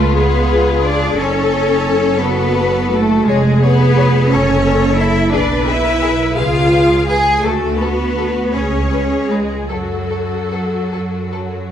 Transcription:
Already playing: double bass section C#2, cello section A3, violin section F4 A4, viola section B4
0.15 cello section B3, viola section G#4, violin section B4
0.83 cello section D4, violin section D5
1.17 double bass section F#1, cello section C#4, viola section A4, violin section A4 C#5
2.22 cello section B3, viola section F#4, violin section B4
2.93 cello section A3, violin section A4
3.26 double bass section F1, cello section G#3, violin section G#4 C#5, viola section G#4
3.62 cello section B3, violin section B4 C#5
3.97 violin section C#5
4.31 double bass section F#1, cello section C#4, viola section A4, violin section A4 C#5
4.66 violin section A4
4.99 cello section E4, violin section A4 E5
5.32 double bass section B1, cello section D4, violin section G#4 D5, viola section B4
5.66 cello section E4, violin section G#4 E5
6.02 violin section G#4
6.36 double bass section C#2, cello section F4, viola section G#4, violin section B4 F5
6.72 violin section B4
7.08 cello section G#4, violin section B4 G#5
7.43 double bass section D2, cello section A3, viola section F#4, violin section A4
7.78 cello section B3, violin section A4 B4
8.18 violin section A4
8.53 double bass section C#2, cello section C#4, viola section G#4, violin section B4 C#5
8.92 violin section B4
9.30 cello section G#3, violin section G#4 B4
9.69 double bass section F#2, cello section F#3, violin section F#4 A4, viola section A4
10.10 violin section A4
10.52 violin section A4
10.92 double bass section F#2, violin section A4
11.32 violin section A4

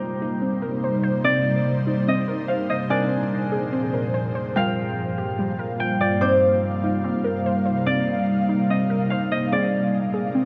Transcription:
Already playing: ambient pad C3 G3 A#3 D#4 C5, synth pluck C4, felt piano D#4 C5 A#5 D6, harp C5
0.22 synth pluck D#4
0.42 synth pluck C4
0.62 synth pluck A#4
0.84 synth pluck C5
1.04 synth pluck C5
1.24 synth pluck C4, harp D5
1.87 synth pluck D#4
2.08 synth pluck C4, harp D#5
2.28 synth pluck A#4
2.48 synth pluck C5, harp F5
2.70 synth pluck C5, harp D#5
2.90 ambient pad A#2 F3 C4 G#4, synth pluck C4, felt piano D4 A#4 G#5, harp D5
3.52 synth pluck G#4
3.73 synth pluck C4
3.94 synth pluck A#4
4.14 synth pluck C5
4.35 synth pluck C5
4.56 ambient pad G2 G3 A#3 F4 F5, synth pluck G3, felt piano F4 A#4 G5, harp F5
5.18 synth pluck G4
5.39 synth pluck G3
5.59 synth pluck A#4
5.80 harp G5, synth pluck G5
6.01 harp D5, synth pluck G5
6.21 ambient pad C3 D#4, felt piano C4 D#4 D6, synth pluck C4, harp C5
6.84 synth pluck D#4
7.04 synth pluck C4
7.24 synth pluck A#4
7.46 synth pluck C5
7.66 synth pluck C5
7.86 synth pluck C4, harp D5
8.49 synth pluck D#4
8.70 synth pluck C4, harp D#5
8.90 synth pluck A#4
9.10 synth pluck C5, harp F5
9.32 synth pluck C5, harp D#5
9.52 ambient pad A#2 G#3 C4 D4 A#4, synth pluck C4, felt piano G#4, harp D5
10.14 synth pluck G#4
10.35 synth pluck C4

